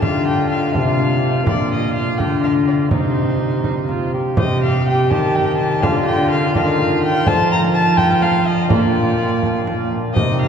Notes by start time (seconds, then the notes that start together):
0.00 D3 A3 D4 F4 F5, frame drum
0.27 G5
0.51 F5
0.71 C3 A3 D4 F4 F5
0.75 C3, frame drum
0.99 frame drum
1.43 A#3 D4 F4, frame drum
1.47 A#2 F4 D5
1.73 D#5
1.94 F5
2.18 D3 G5, frame drum
2.44 F5, frame drum
2.68 D5
2.89 C3 D#4 C5, frame drum
3.64 D#4, frame drum
3.89 F4, frame drum
4.14 G4
4.36 C3 G4 C5 D#5, frame drum
4.63 F5
4.88 G5
5.11 D#3 A5, frame drum
5.35 G5, frame drum
5.58 A5
5.80 D3 D4 F4 A4 F5, frame drum
6.06 G5
6.31 F5
6.53 D#3 D4 F4 A4 F5, frame drum
6.78 frame drum
7.03 G5
7.25 F3 C4 F4 A4 A5, frame drum
7.52 A#5
7.75 A5
7.97 G5, frame drum
8.22 F5, frame drum
8.47 D#5
8.67 A#2 D4 F4 A#4 D5, frame drum
8.72 F4
9.43 frame drum
9.67 frame drum
10.14 C3 C4 D#4 G4 D#5, frame drum
10.18 D#4
10.42 F5